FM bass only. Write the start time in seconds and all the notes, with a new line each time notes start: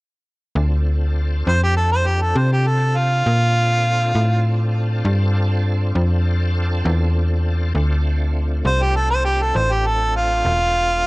0.55 D2
1.47 F2
2.35 C3
3.26 A#2
4.15 A2
5.05 G2
5.95 F2
6.85 E2
7.75 D2
8.65 C2
9.55 A1
10.45 E1